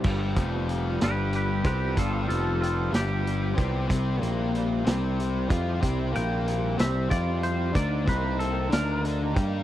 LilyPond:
<<
  \new Staff \with { instrumentName = "Clean electric guitar" } { \time 6/8 \key c \major \tempo 4. = 62 r4. <g' b'>8 <g' b'>8 <g' b'>8 | <f' a'>8 <f' a'>8 <f' a'>8 g'4.~ | g'8 r2 r8 | r8 g''4 e''8 d''8 c''8 |
d''8 b'8 a'8 bes'8 r4 | }
  \new Staff \with { instrumentName = "Overdriven electric guitar" } { \time 6/8 \key c \major <f g b g'>8 <f g b g'>8 <f g b g'>8 <f g b g'>8 <f g b g'>8 <f g b g'>8 | <f g b g'>8 <f g b g'>8 <f g b g'>8 <f g b g'>8 <f g b g'>8 <f g b g'>8 | <g c' e' g'>8 <g c' e' g'>8 <g c' e' g'>8 <g c' e' g'>8 <g c' e' g'>8 <g c' e' g'>8 | <g c' e' g'>8 <g c' e' g'>8 <g c' e' g'>8 <g c' e' g'>8 <g c' e' g'>8 <g c' e' g'>8 |
<ees bes ees' bes'>8 <ees bes ees' bes'>8 <ees bes ees' bes'>8 <ees bes ees' bes'>8 <ees bes ees' bes'>8 <ees bes ees' bes'>8 | }
  \new Staff \with { instrumentName = "Overdriven electric guitar" } { \clef bass \time 6/8 \key c \major <g, g>8 <f, f>4 <g, g>4 <c c'>8 | <g, g>8 <f, f>4 <g, g>4 <c c'>8 | <c c'>8 <bes, bes>4 <c c'>4 <f f'>8 | <c c'>8 <bes, bes>4 <c c'>8 <f f'>4 |
<d d'>8 <c c'>4 <d d'>4 <g g'>8 | }
  \new Staff \with { instrumentName = "Picked electric bass" } { \clef bass \time 6/8 \key c \major g,,8 f,,4 g,,4 c,8 | g,,8 f,,4 g,,4 c,8 | c,8 bes,,4 c,4 f,8 | c,8 bes,,4 c,8 f,4 |
d,8 c,4 d,4 g,8 | }
  \new DrumStaff \with { instrumentName = "Drums" } \drummode { \time 6/8 <cymc bd>8 <hh bd>8 hh8 <hh sn>8 hh8 <hh bd>8 | <hh bd>8 hh8 hh8 <hh sn>8 hh8 <hh bd>8 | <hh bd>8 hh8 hh8 <hh sn>8 hh8 <hh bd>8 | <hh bd>8 hh8 hh8 <hh sn>8 <hh bd>8 hh8 |
<hh bd>8 <hh bd>8 hh8 <hh sn>8 hh8 <hh bd>8 | }
>>